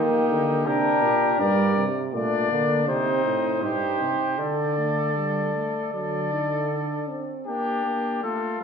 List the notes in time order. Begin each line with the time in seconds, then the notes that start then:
Already playing: D#3 A#3 D#4 G4
0.29 D3
0.66 C3 D4 G4 A#4
1.03 A#2
1.40 G2 G3 A#4 D5
1.77 C3
2.13 A#2 A3 D4 D5
2.51 D3 A#3
2.88 C3 C4 D#4 C5
3.25 A2
3.62 G2 D#4 G4 C5
4.01 C3
4.39 D3 D4 A4 D5
4.78 A3
5.17 G3
5.55 A3
5.93 D3 F#3 A4 D5
6.32 D#4
6.71 D4
7.09 C4
7.47 A#3 D4 G4
7.86 A#3
8.23 A3 F4 A4